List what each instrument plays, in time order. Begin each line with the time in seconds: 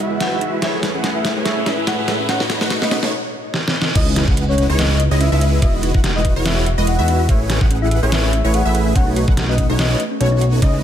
Already playing: ambient pad E2 E3 G#4 F#5, riser
0.00 supersaw synth G#3 E4 F#4 B4 E5
0.11 synth arpeggio sound G#4
0.20 synth arpeggio sound B4, soft synth lead F#5, snare, closed hi-hat
0.32 supersaw synth G#3 E4 F#4 B4 E5, synth arpeggio sound D#4
0.41 synth arpeggio sound D#4, closed hi-hat
0.53 synth arpeggio sound E4
0.62 ambient pad A2 G#4 B4 C#5, supersaw synth A3 E4 G#4 B4 C#5, synth arpeggio sound G#4, soft synth lead E5, snare, closed hi-hat
0.74 synth arpeggio sound A4
0.83 synth arpeggio sound B4, snare, closed hi-hat
0.94 supersaw synth A3 E4 G#4 B4 F#5, synth arpeggio sound C#4
1.04 synth arpeggio sound C#4, snare, closed hi-hat
1.15 synth arpeggio sound E4, soft synth lead E5
1.25 synth arpeggio sound G#4, snare, closed hi-hat
1.36 supersaw synth A3 E4 G#4 B4 C#5, synth arpeggio sound A4
1.45 synth arpeggio sound B4, soft synth lead E5, snare, closed hi-hat
1.57 synth arpeggio sound C#4
1.66 supersaw synth A3 E4 G#4 B4 E5, synth arpeggio sound C#4, snare, closed hi-hat
1.78 synth arpeggio sound E4
1.87 synth arpeggio sound G#4, soft synth lead F#5, snare, closed hi-hat
1.99 supersaw synth A3 E4 G#4 B4 E5, synth arpeggio sound A4
2.08 synth arpeggio sound B4, snare, closed hi-hat
2.20 synth arpeggio sound C#4
2.29 ambient pad B2 A3 D#5, supersaw synth A3 D#4 F#4 B4 C#5, synth arpeggio sound C#4, soft synth lead F#5, snare, closed hi-hat
2.40 synth arpeggio sound D#4, snare
2.50 synth arpeggio sound F#4, snare, closed hi-hat
2.61 supersaw synth A3 D#4 F#4 B4 F#5, synth arpeggio sound A4, snare
2.70 synth arpeggio sound B4, snare, closed hi-hat
2.82 synth arpeggio sound C#4, soft synth lead D#5, snare
2.91 synth arpeggio sound C#4, snare, closed hi-hat
3.03 supersaw synth A3 D#4 F#4 B4 C#5, synth arpeggio sound D#4, snare
3.54 snare
3.68 snare
3.82 snare
3.95 analog synth bass C#2, ambient pad C#3 B3 E4 D#5, supersaw synth G#3 C#4 E4 B4 D#5, synth arpeggio sound C#4, soft synth lead D#5, synth pluck D#5, kick, closed hi-hat, ride, crash, impact
4.07 synth arpeggio sound D#4
4.16 synth arpeggio sound E4, snare, closed hi-hat
4.28 analog synth bass C#2, supersaw synth G#3 E4 B4 F#5, synth arpeggio sound G#4, synth pluck F#5, kick
4.37 synth arpeggio sound B4, closed hi-hat
4.49 synth arpeggio sound C#4, soft synth lead C#5
4.58 synth arpeggio sound C#4, closed hi-hat
4.69 analog synth bass C#2, supersaw synth G#3 C#4 E4 B4 C#5, synth arpeggio sound D#4, synth pluck C#5
4.79 synth arpeggio sound E4, soft synth lead D#5, snare, closed hi-hat
4.90 synth arpeggio sound G#4
5.00 synth arpeggio sound B4, closed hi-hat
5.11 analog synth bass C#2, supersaw synth G#3 C#4 E4 B4 D#5, synth arpeggio sound C#4, synth pluck D#5
5.20 synth arpeggio sound C#4, soft synth lead E5, closed hi-hat
5.32 analog synth bass C#2, supersaw synth G#3 C#4 E4 B4 E5, synth arpeggio sound D#4, synth pluck E5
5.41 synth arpeggio sound E4, closed hi-hat
5.53 synth arpeggio sound G#4
5.62 analog synth bass E1, ambient pad E3 F#4 G#4, supersaw synth G#3 E4 F#4 D#5, synth arpeggio sound B4, synth pluck D#5, soft synth lead E5, kick, closed hi-hat, ride
5.74 synth arpeggio sound D#4
5.83 synth arpeggio sound D#4, closed hi-hat
5.94 analog synth bass E1, supersaw synth G#3 F#4 B4 F#5, synth arpeggio sound E4, synth pluck F#5, kick
6.04 synth arpeggio sound F#4, snare, closed hi-hat
6.15 synth arpeggio sound G#4, soft synth lead D#5
6.25 synth arpeggio sound B4, kick, closed hi-hat
6.36 analog synth bass E1, supersaw synth G#3 E4 F#4 B4 C#5, synth arpeggio sound D#4, synth pluck C#5
6.46 synth arpeggio sound D#4, soft synth lead E5, snare, closed hi-hat
6.57 synth arpeggio sound E4
6.66 synth arpeggio sound F#4, closed hi-hat
6.78 analog synth bass E1, supersaw synth G#3 E4 F#4 B4 D#5, synth arpeggio sound G#4, synth pluck D#5
6.87 synth arpeggio sound B4, soft synth lead F#5, closed hi-hat
6.99 analog synth bass E2, supersaw synth G#3 E4 F#4 B4 E5, synth arpeggio sound D#4, synth pluck E5
7.08 synth arpeggio sound D#4, closed hi-hat
7.20 synth arpeggio sound E4
7.29 analog synth bass A1, supersaw synth A3 E4 G#4 B4 C#5, ambient pad A3 C#4 G#4, synth arpeggio sound G#4, synth pluck C#5, soft synth lead E5, kick, closed hi-hat, ride
7.40 synth arpeggio sound A4
7.50 synth arpeggio sound B4, snare, closed hi-hat
7.61 analog synth bass A1, supersaw synth A3 G#4 B4 F#5, synth arpeggio sound C#4, synth pluck F#5, kick
7.71 synth arpeggio sound C#4, closed hi-hat
7.82 synth arpeggio sound E4, soft synth lead E5
7.91 synth arpeggio sound G#4, closed hi-hat
8.03 analog synth bass A1, supersaw synth A3 E4 G#4 B4 C#5, synth arpeggio sound A4, synth pluck C#5
8.12 synth arpeggio sound B4, soft synth lead E5, snare, closed hi-hat
8.24 synth arpeggio sound C#4
8.33 synth arpeggio sound C#4, closed hi-hat
8.44 analog synth bass A1, supersaw synth A3 E4 G#4 B4 C#5, synth arpeggio sound E4, synth pluck C#5
8.54 synth arpeggio sound G#4, soft synth lead F#5, closed hi-hat
8.65 analog synth bass A1, supersaw synth A3 E4 G#4 B4 E5, synth arpeggio sound A4, synth pluck E5
8.75 synth arpeggio sound B4, closed hi-hat
8.86 synth arpeggio sound C#4
8.96 analog synth bass B1, supersaw synth A3 D#4 F#4 B4 C#5, ambient pad B3 C#4, synth arpeggio sound C#4, synth pluck C#5, soft synth lead F#5, kick, closed hi-hat, ride
9.07 synth arpeggio sound D#4
9.16 synth arpeggio sound F#4, closed hi-hat
9.28 analog synth bass B1, supersaw synth A3 F#4 B4 F#5, synth arpeggio sound A4, synth pluck F#5, kick
9.37 synth arpeggio sound B4, snare, closed hi-hat
9.49 synth arpeggio sound C#4, soft synth lead D#5
9.58 synth arpeggio sound C#4, kick, closed hi-hat
9.70 analog synth bass B1, supersaw synth A3 D#4 F#4 B4 C#5, synth arpeggio sound D#4, synth pluck C#5
9.79 synth arpeggio sound F#4, soft synth lead D#5, snare, closed hi-hat
9.90 synth arpeggio sound A4
10.00 synth arpeggio sound B4, closed hi-hat
10.11 synth arpeggio sound C#4
10.20 analog synth bass B1, supersaw synth A3 D#4 F#4 B4 C#5, synth arpeggio sound C#4, synth pluck C#5, soft synth lead C#5, closed hi-hat
10.32 synth arpeggio sound D#4
10.41 synth arpeggio sound F#4, closed hi-hat
10.53 synth arpeggio sound A4
10.62 analog synth bass C#2, supersaw synth G#3 C#4 B4 D#5, synth arpeggio sound C#4, synth pluck D#5, soft synth lead D#5, kick, closed hi-hat, ride
10.74 synth arpeggio sound D#4